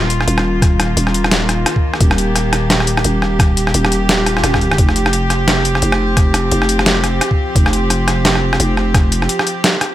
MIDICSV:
0, 0, Header, 1, 5, 480
1, 0, Start_track
1, 0, Tempo, 346821
1, 858, Time_signature, 4, 2, 24, 8
1, 13767, End_track
2, 0, Start_track
2, 0, Title_t, "Cello section"
2, 0, Program_c, 0, 48
2, 0, Note_on_c, 0, 51, 83
2, 0, Note_on_c, 0, 58, 73
2, 0, Note_on_c, 0, 65, 89
2, 2721, Note_off_c, 0, 65, 0
2, 2774, Note_on_c, 0, 67, 92
2, 6567, Note_off_c, 0, 58, 0
2, 6569, Note_off_c, 0, 51, 0
2, 6620, Note_on_c, 0, 53, 82
2, 6622, Note_on_c, 0, 60, 75
2, 13767, Note_off_c, 0, 53, 0
2, 13767, Note_off_c, 0, 60, 0
2, 13767, Note_off_c, 0, 67, 0
2, 13767, End_track
3, 0, Start_track
3, 0, Title_t, "808-style bass"
3, 0, Program_c, 1, 38
3, 0, Note_on_c, 1, 27, 97
3, 361, Note_off_c, 1, 27, 0
3, 382, Note_on_c, 1, 27, 99
3, 1324, Note_off_c, 1, 27, 0
3, 1340, Note_on_c, 1, 27, 98
3, 2284, Note_off_c, 1, 27, 0
3, 2776, Note_on_c, 1, 27, 98
3, 4201, Note_off_c, 1, 27, 0
3, 4219, Note_on_c, 1, 27, 99
3, 5163, Note_off_c, 1, 27, 0
3, 5182, Note_on_c, 1, 27, 102
3, 6124, Note_off_c, 1, 27, 0
3, 6141, Note_on_c, 1, 27, 98
3, 6604, Note_off_c, 1, 27, 0
3, 6622, Note_on_c, 1, 29, 97
3, 8044, Note_off_c, 1, 29, 0
3, 8060, Note_on_c, 1, 29, 98
3, 9004, Note_off_c, 1, 29, 0
3, 9022, Note_on_c, 1, 29, 99
3, 9964, Note_off_c, 1, 29, 0
3, 10458, Note_on_c, 1, 29, 99
3, 11882, Note_off_c, 1, 29, 0
3, 11901, Note_on_c, 1, 29, 100
3, 12844, Note_off_c, 1, 29, 0
3, 13767, End_track
4, 0, Start_track
4, 0, Title_t, "Swell"
4, 0, Program_c, 2, 103
4, 5656, Note_on_c, 2, 60, 62
4, 6617, Note_off_c, 2, 60, 0
4, 13767, End_track
5, 0, Start_track
5, 0, Title_t, "Drums"
5, 139, Note_on_c, 9, 42, 59
5, 277, Note_off_c, 9, 42, 0
5, 285, Note_on_c, 9, 37, 50
5, 382, Note_on_c, 9, 42, 77
5, 423, Note_off_c, 9, 37, 0
5, 521, Note_off_c, 9, 42, 0
5, 521, Note_on_c, 9, 37, 79
5, 660, Note_off_c, 9, 37, 0
5, 857, Note_on_c, 9, 36, 115
5, 862, Note_on_c, 9, 37, 53
5, 862, Note_on_c, 9, 42, 74
5, 996, Note_off_c, 9, 36, 0
5, 1000, Note_off_c, 9, 37, 0
5, 1000, Note_off_c, 9, 42, 0
5, 1102, Note_on_c, 9, 37, 79
5, 1102, Note_on_c, 9, 42, 65
5, 1240, Note_off_c, 9, 37, 0
5, 1240, Note_off_c, 9, 42, 0
5, 1342, Note_on_c, 9, 42, 77
5, 1479, Note_on_c, 9, 37, 51
5, 1480, Note_off_c, 9, 42, 0
5, 1583, Note_on_c, 9, 42, 65
5, 1617, Note_off_c, 9, 37, 0
5, 1722, Note_off_c, 9, 42, 0
5, 1722, Note_on_c, 9, 37, 80
5, 1819, Note_on_c, 9, 38, 112
5, 1819, Note_on_c, 9, 42, 75
5, 1860, Note_off_c, 9, 37, 0
5, 1958, Note_off_c, 9, 38, 0
5, 1958, Note_off_c, 9, 42, 0
5, 2061, Note_on_c, 9, 37, 54
5, 2061, Note_on_c, 9, 42, 60
5, 2200, Note_off_c, 9, 37, 0
5, 2200, Note_off_c, 9, 42, 0
5, 2299, Note_on_c, 9, 37, 84
5, 2299, Note_on_c, 9, 42, 79
5, 2437, Note_off_c, 9, 37, 0
5, 2437, Note_off_c, 9, 42, 0
5, 2437, Note_on_c, 9, 36, 59
5, 2575, Note_off_c, 9, 36, 0
5, 2679, Note_on_c, 9, 37, 51
5, 2775, Note_on_c, 9, 36, 114
5, 2775, Note_on_c, 9, 42, 78
5, 2817, Note_off_c, 9, 37, 0
5, 2913, Note_off_c, 9, 36, 0
5, 2914, Note_off_c, 9, 42, 0
5, 2919, Note_on_c, 9, 37, 84
5, 3020, Note_on_c, 9, 42, 65
5, 3057, Note_off_c, 9, 37, 0
5, 3158, Note_off_c, 9, 42, 0
5, 3260, Note_on_c, 9, 37, 54
5, 3260, Note_on_c, 9, 42, 78
5, 3398, Note_off_c, 9, 37, 0
5, 3398, Note_off_c, 9, 42, 0
5, 3497, Note_on_c, 9, 37, 81
5, 3497, Note_on_c, 9, 42, 64
5, 3636, Note_off_c, 9, 37, 0
5, 3636, Note_off_c, 9, 42, 0
5, 3737, Note_on_c, 9, 38, 113
5, 3737, Note_on_c, 9, 42, 77
5, 3875, Note_off_c, 9, 38, 0
5, 3875, Note_off_c, 9, 42, 0
5, 3880, Note_on_c, 9, 37, 54
5, 3974, Note_on_c, 9, 42, 63
5, 4018, Note_off_c, 9, 37, 0
5, 4113, Note_off_c, 9, 42, 0
5, 4116, Note_on_c, 9, 37, 81
5, 4213, Note_on_c, 9, 42, 81
5, 4255, Note_off_c, 9, 37, 0
5, 4352, Note_off_c, 9, 42, 0
5, 4459, Note_on_c, 9, 37, 54
5, 4597, Note_off_c, 9, 37, 0
5, 4695, Note_on_c, 9, 36, 115
5, 4701, Note_on_c, 9, 37, 85
5, 4701, Note_on_c, 9, 42, 80
5, 4833, Note_off_c, 9, 36, 0
5, 4840, Note_off_c, 9, 37, 0
5, 4840, Note_off_c, 9, 42, 0
5, 4942, Note_on_c, 9, 42, 70
5, 5081, Note_off_c, 9, 42, 0
5, 5081, Note_on_c, 9, 37, 57
5, 5179, Note_on_c, 9, 42, 82
5, 5220, Note_off_c, 9, 37, 0
5, 5317, Note_off_c, 9, 42, 0
5, 5322, Note_on_c, 9, 37, 84
5, 5423, Note_on_c, 9, 42, 69
5, 5461, Note_off_c, 9, 37, 0
5, 5561, Note_off_c, 9, 42, 0
5, 5662, Note_on_c, 9, 37, 55
5, 5662, Note_on_c, 9, 38, 115
5, 5662, Note_on_c, 9, 42, 82
5, 5800, Note_off_c, 9, 37, 0
5, 5800, Note_off_c, 9, 38, 0
5, 5800, Note_off_c, 9, 42, 0
5, 5902, Note_on_c, 9, 37, 61
5, 5902, Note_on_c, 9, 42, 64
5, 6040, Note_off_c, 9, 37, 0
5, 6040, Note_off_c, 9, 42, 0
5, 6044, Note_on_c, 9, 37, 58
5, 6139, Note_off_c, 9, 37, 0
5, 6139, Note_on_c, 9, 37, 81
5, 6139, Note_on_c, 9, 42, 85
5, 6278, Note_off_c, 9, 37, 0
5, 6278, Note_off_c, 9, 42, 0
5, 6279, Note_on_c, 9, 36, 60
5, 6284, Note_on_c, 9, 37, 76
5, 6385, Note_on_c, 9, 42, 38
5, 6418, Note_off_c, 9, 36, 0
5, 6422, Note_off_c, 9, 37, 0
5, 6523, Note_off_c, 9, 42, 0
5, 6525, Note_on_c, 9, 37, 89
5, 6620, Note_on_c, 9, 36, 121
5, 6621, Note_on_c, 9, 42, 83
5, 6663, Note_off_c, 9, 37, 0
5, 6758, Note_off_c, 9, 36, 0
5, 6759, Note_off_c, 9, 42, 0
5, 6762, Note_on_c, 9, 37, 55
5, 6862, Note_on_c, 9, 42, 70
5, 6901, Note_off_c, 9, 37, 0
5, 7001, Note_off_c, 9, 42, 0
5, 7002, Note_on_c, 9, 37, 82
5, 7100, Note_on_c, 9, 42, 85
5, 7140, Note_off_c, 9, 37, 0
5, 7238, Note_off_c, 9, 42, 0
5, 7337, Note_on_c, 9, 37, 55
5, 7337, Note_on_c, 9, 42, 69
5, 7476, Note_off_c, 9, 37, 0
5, 7476, Note_off_c, 9, 42, 0
5, 7580, Note_on_c, 9, 37, 83
5, 7580, Note_on_c, 9, 38, 117
5, 7580, Note_on_c, 9, 42, 82
5, 7718, Note_off_c, 9, 37, 0
5, 7718, Note_off_c, 9, 38, 0
5, 7718, Note_off_c, 9, 42, 0
5, 7820, Note_on_c, 9, 42, 65
5, 7958, Note_off_c, 9, 42, 0
5, 7961, Note_on_c, 9, 37, 56
5, 8056, Note_on_c, 9, 42, 83
5, 8099, Note_off_c, 9, 37, 0
5, 8194, Note_off_c, 9, 42, 0
5, 8198, Note_on_c, 9, 37, 88
5, 8337, Note_off_c, 9, 37, 0
5, 8537, Note_on_c, 9, 36, 127
5, 8537, Note_on_c, 9, 37, 55
5, 8537, Note_on_c, 9, 42, 83
5, 8675, Note_off_c, 9, 36, 0
5, 8675, Note_off_c, 9, 37, 0
5, 8675, Note_off_c, 9, 42, 0
5, 8775, Note_on_c, 9, 37, 81
5, 8775, Note_on_c, 9, 42, 72
5, 8913, Note_off_c, 9, 37, 0
5, 8913, Note_off_c, 9, 42, 0
5, 9016, Note_on_c, 9, 42, 86
5, 9155, Note_off_c, 9, 42, 0
5, 9158, Note_on_c, 9, 37, 55
5, 9257, Note_on_c, 9, 42, 70
5, 9297, Note_off_c, 9, 37, 0
5, 9396, Note_off_c, 9, 42, 0
5, 9399, Note_on_c, 9, 37, 82
5, 9497, Note_on_c, 9, 38, 124
5, 9497, Note_on_c, 9, 42, 83
5, 9538, Note_off_c, 9, 37, 0
5, 9635, Note_off_c, 9, 38, 0
5, 9635, Note_off_c, 9, 42, 0
5, 9738, Note_on_c, 9, 37, 54
5, 9738, Note_on_c, 9, 42, 67
5, 9877, Note_off_c, 9, 37, 0
5, 9877, Note_off_c, 9, 42, 0
5, 9981, Note_on_c, 9, 37, 85
5, 9981, Note_on_c, 9, 42, 86
5, 10117, Note_on_c, 9, 36, 64
5, 10120, Note_off_c, 9, 37, 0
5, 10120, Note_off_c, 9, 42, 0
5, 10256, Note_off_c, 9, 36, 0
5, 10455, Note_on_c, 9, 36, 127
5, 10459, Note_on_c, 9, 42, 82
5, 10594, Note_off_c, 9, 36, 0
5, 10597, Note_off_c, 9, 42, 0
5, 10602, Note_on_c, 9, 37, 78
5, 10699, Note_on_c, 9, 42, 70
5, 10740, Note_off_c, 9, 37, 0
5, 10838, Note_off_c, 9, 42, 0
5, 10937, Note_on_c, 9, 37, 53
5, 10937, Note_on_c, 9, 42, 82
5, 11075, Note_off_c, 9, 37, 0
5, 11075, Note_off_c, 9, 42, 0
5, 11178, Note_on_c, 9, 37, 78
5, 11178, Note_on_c, 9, 42, 69
5, 11316, Note_off_c, 9, 37, 0
5, 11316, Note_off_c, 9, 42, 0
5, 11417, Note_on_c, 9, 38, 127
5, 11417, Note_on_c, 9, 42, 78
5, 11556, Note_off_c, 9, 38, 0
5, 11556, Note_off_c, 9, 42, 0
5, 11562, Note_on_c, 9, 37, 50
5, 11700, Note_off_c, 9, 37, 0
5, 11803, Note_on_c, 9, 37, 77
5, 11900, Note_on_c, 9, 42, 83
5, 11941, Note_off_c, 9, 37, 0
5, 12038, Note_off_c, 9, 42, 0
5, 12142, Note_on_c, 9, 37, 52
5, 12281, Note_off_c, 9, 37, 0
5, 12378, Note_on_c, 9, 36, 127
5, 12380, Note_on_c, 9, 37, 79
5, 12380, Note_on_c, 9, 42, 77
5, 12516, Note_off_c, 9, 36, 0
5, 12518, Note_off_c, 9, 37, 0
5, 12518, Note_off_c, 9, 42, 0
5, 12622, Note_on_c, 9, 42, 67
5, 12760, Note_off_c, 9, 42, 0
5, 12764, Note_on_c, 9, 37, 51
5, 12860, Note_on_c, 9, 42, 82
5, 12902, Note_off_c, 9, 37, 0
5, 12999, Note_off_c, 9, 42, 0
5, 13001, Note_on_c, 9, 37, 73
5, 13102, Note_on_c, 9, 42, 66
5, 13139, Note_off_c, 9, 37, 0
5, 13240, Note_off_c, 9, 42, 0
5, 13342, Note_on_c, 9, 37, 51
5, 13342, Note_on_c, 9, 38, 123
5, 13342, Note_on_c, 9, 42, 78
5, 13481, Note_off_c, 9, 37, 0
5, 13481, Note_off_c, 9, 38, 0
5, 13481, Note_off_c, 9, 42, 0
5, 13579, Note_on_c, 9, 37, 74
5, 13579, Note_on_c, 9, 42, 61
5, 13718, Note_off_c, 9, 37, 0
5, 13718, Note_off_c, 9, 42, 0
5, 13767, End_track
0, 0, End_of_file